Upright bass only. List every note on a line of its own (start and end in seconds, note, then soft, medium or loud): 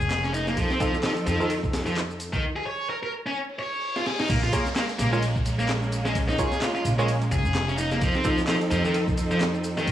0.01 0.54 F1 medium
1.26 2.40 F2 medium
4.29 4.49 A#1 loud
4.99 6.35 A#1 medium
6.85 7.28 A#1 medium
7.32 7.42 F1 medium
7.45 7.98 F1 medium
8.71 9.84 F2 medium